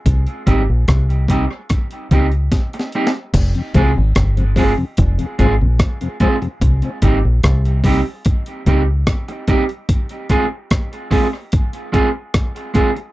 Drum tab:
CC |------------------------------------------------|x-----------------------------------------------|------------------------------------------------|------------------------------------------------|
HH |x--x--x-----x--x--x-----x--x--x--x--x--x--x--x--|x--x--x-----x--x--o-----x--x--x-----x--x--x--x--|x--x--x-----x--x--o-----x--x--x-----x--x--x--x--|x--x--x-----x--x--o-----x--x--x-----x--x--x--x--|
SD |------------r-----------r-----------o---o---o---|------------r-----------------------r-----------|------------r-----------------------r-----------|------------r-----------------------r-----------|
BD |o-----o-----o-----o-----o-----o-----o-----------|o-----o-----o-----o-----o-----o-----o-----o-----|o-----o-----o-----o-----o-----o-----o-----o-----|o-----o-----o-----o-----o-----o-----o-----o-----|